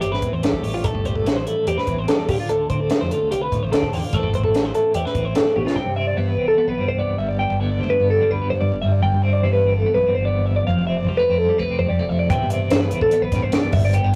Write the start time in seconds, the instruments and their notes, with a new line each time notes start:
Already playing: clean electric guitar A2 E3 G3 E4
0.01 fingered electric bass G1, clean electric guitar C4 G4, closed hi-hat
0.12 clean electric guitar B4, snare
0.22 clean electric guitar E2, kick, closed hi-hat
0.32 fingered electric bass E2, clean electric guitar C5
0.43 fingered electric bass A1, clean electric guitar G3 A4, snare, closed hi-hat
0.53 kick
0.63 fingered electric bass A1, clean electric guitar A2 G4, open hi-hat
0.74 clean electric guitar F4
0.84 clean electric guitar A4, kick, closed hi-hat
0.95 fingered electric bass G1, kick
1.05 clean electric guitar G3 C5, kick, closed hi-hat
1.15 clean electric guitar A4, kick
1.26 fingered electric bass A1, clean electric guitar E3, snare, closed hi-hat
1.36 clean electric guitar C5
1.46 clean electric guitar E4 A4, closed hi-hat
1.67 fingered electric bass E2, clean electric guitar C4 G4, closed hi-hat
1.78 clean electric guitar B4, snare
1.87 fingered electric bass A1, clean electric guitar E2, kick, closed hi-hat
1.99 clean electric guitar C5
2.08 clean electric guitar G3 A4, snare, closed hi-hat
2.29 fingered electric bass D2, clean electric guitar D3 F4 G4, kick, open hi-hat
2.40 clean electric guitar F4
2.49 fingered electric bass D2, clean electric guitar A4, closed hi-hat
2.70 fingered electric bass D2, clean electric guitar C4 C5, kick, closed hi-hat
2.80 clean electric guitar A4
2.90 clean electric guitar A3, snare, closed hi-hat
3.01 fingered electric bass F2, clean electric guitar C5
3.11 clean electric guitar F4 A4, closed hi-hat
3.23 fingered electric bass D2
3.31 fingered electric bass C2, clean electric guitar F4 G4, closed hi-hat
3.42 clean electric guitar B4
3.52 clean electric guitar A2, kick, closed hi-hat
3.63 fingered electric bass A1, clean electric guitar C5
3.72 fingered electric bass D2, clean electric guitar C4 A4, snare, closed hi-hat
3.83 kick
3.93 fingered electric bass E2, clean electric guitar D3 F4 G4, open hi-hat
4.04 clean electric guitar F4
4.13 fingered electric bass A1, clean electric guitar A2 E3 A3 C4 E4 A4, kick, closed hi-hat
4.23 fingered electric bass G1, kick
4.33 clean electric guitar C5, kick, closed hi-hat
4.44 clean electric guitar A4, kick
4.54 fingered electric bass A1, clean electric guitar A3, snare, closed hi-hat
4.65 clean electric guitar C5
4.75 clean electric guitar E3 A4, closed hi-hat
4.94 fingered electric bass E2, clean electric guitar E4 G4, closed hi-hat
5.05 clean electric guitar B4, snare
5.15 fingered electric bass A1, clean electric guitar C4, kick, closed hi-hat
5.25 clean electric guitar C5
5.35 clean electric guitar A2 A4, snare, closed hi-hat
5.56 fingered electric bass A1, clean electric guitar B2 G4, high tom
5.66 clean electric guitar F4, snare
5.76 fingered electric bass C2, clean electric guitar C3 G5
5.86 fingered electric bass G2
5.96 clean electric guitar C4 E5
6.07 clean electric guitar D5
6.17 fingered electric bass G2, clean electric guitar E3 B3 C5
6.28 clean electric guitar B4
6.37 fingered electric bass C2, clean electric guitar C4
6.48 clean electric guitar A4
6.58 clean electric guitar B3
6.67 fingered electric bass B1, clean electric guitar B4
6.78 clean electric guitar G2 C4
6.88 fingered electric bass C2, clean electric guitar C5
6.99 clean electric guitar B3 D5
7.18 fingered electric bass G1, clean electric guitar G2 E5
7.28 clean electric guitar D5
7.39 clean electric guitar D4 G5
7.49 fingered electric bass G1
7.60 clean electric guitar D3 B3 E5
7.69 clean electric guitar D5
7.79 fingered electric bass D2, clean electric guitar D4 C5
7.90 clean electric guitar B4
8.00 fingered electric bass G2, clean electric guitar B3
8.10 clean electric guitar A4
8.21 clean electric guitar G2 D4
8.31 fingered electric bass D2, clean electric guitar B4
8.42 clean electric guitar B3
8.50 fingered electric bass G2, clean electric guitar C5
8.61 fingered electric bass G2, clean electric guitar D5
8.72 fingered electric bass G1
8.82 fingered electric bass G2, clean electric guitar G2 E5
8.92 clean electric guitar D5
9.02 fingered electric bass G1, clean electric guitar G2 G5
9.13 fingered electric bass G2
9.22 clean electric guitar C4 E5
9.33 clean electric guitar D5
9.43 fingered electric bass G2, clean electric guitar E3 B3 C5
9.53 clean electric guitar B4
9.64 fingered electric bass G1, clean electric guitar C4
9.74 clean electric guitar A4
9.86 clean electric guitar B3
9.95 fingered electric bass B1, clean electric guitar B4
10.06 clean electric guitar G2 C4
10.15 fingered electric bass G1, clean electric guitar C5
10.25 clean electric guitar B3 D5
10.46 clean electric guitar E5
10.56 clean electric guitar D5
10.67 fingered electric bass F1, clean electric guitar F2 F5
10.78 fingered electric bass F1
10.87 clean electric guitar C4 E5
10.97 clean electric guitar D5
11.07 fingered electric bass C2, clean electric guitar F3 G3 C5
11.17 clean electric guitar A3 B4
11.29 fingered electric bass F2, clean electric guitar C4
11.38 clean electric guitar A4
11.49 clean electric guitar G3
11.58 fingered electric bass C2, clean electric guitar A3 B4
11.70 clean electric guitar C3 C4
11.79 fingered electric bass F2, clean electric guitar C5
11.89 fingered electric bass F2, clean electric guitar G3 D5
11.99 fingered electric bass F1, clean electric guitar A3
12.09 fingered electric bass F2, clean electric guitar E5
12.19 clean electric guitar D5
12.30 fingered electric bass C2, clean electric guitar C3 E3 B3 C4 E4 G5, kick, closed hi-hat
12.42 fingered electric bass G2
12.50 clean electric guitar C4 E5, closed hi-hat
12.62 clean electric guitar D5
12.70 fingered electric bass G2, clean electric guitar E3 B3 C5, snare, closed hi-hat
12.82 clean electric guitar B4
12.91 fingered electric bass C2, clean electric guitar C4, closed hi-hat
13.01 clean electric guitar A4, kick
13.11 clean electric guitar B3, closed hi-hat
13.22 fingered electric bass B1, clean electric guitar B4
13.32 clean electric guitar G2 C4, kick, snare, closed hi-hat
13.42 fingered electric bass C2, clean electric guitar C5
13.52 clean electric guitar B3 D5, snare, closed hi-hat
13.72 fingered electric bass G1, clean electric guitar G2 E5, kick, open hi-hat
13.85 clean electric guitar D5
13.93 clean electric guitar B3 G5, closed hi-hat
14.03 fingered electric bass G1, clean electric guitar D4